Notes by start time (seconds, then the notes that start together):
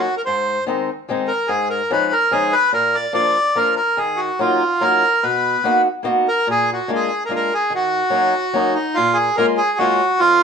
0.00 F#4
0.17 A#4
0.25 G#2 C5
0.66 D#3 G#3 C4 D#4
1.09 D#3 G#3 C4 D#4
1.27 A#4
1.48 G#2 G#4
1.70 A#4
1.90 F3 G#3 C#4 D#4 B4
2.12 A#4
2.31 F3 G#3 C#4 D#4 G#4
2.53 B4
2.73 A#2 A#4
2.95 D5
3.13 F3 A#3 D4 F4 D5
3.55 F3 A#3 D4 F4 A#4
3.76 A#4
3.97 D#3 G#4
4.16 F#4
4.39 F#3 A#3 D#4 F4
4.81 F#3 A#3 D#4 F4 A#4
5.23 B2 B4
5.64 A#3 B3 D#4 F#4
6.03 A#3 B3 D#4 F#4
6.28 A#4
6.47 A#2 G#4
6.73 F#4
6.88 G#3 A#3 D4 F4
6.95 G#4
7.25 G#3 A#4
7.30 A#3 D4 F4
7.35 A#4
7.54 G#4
7.70 D#3
7.75 F#4
8.10 F#3 A#3 C#4 D#4
8.53 F#3 A#3 C#4 D#4
8.74 D#4
8.95 A#2 F4
9.13 G#4
9.37 G#3 A#3 C#4 F4 A#4
9.57 G#4
9.78 G#3 A#3 C#4 F4 F#4
10.19 F2 F4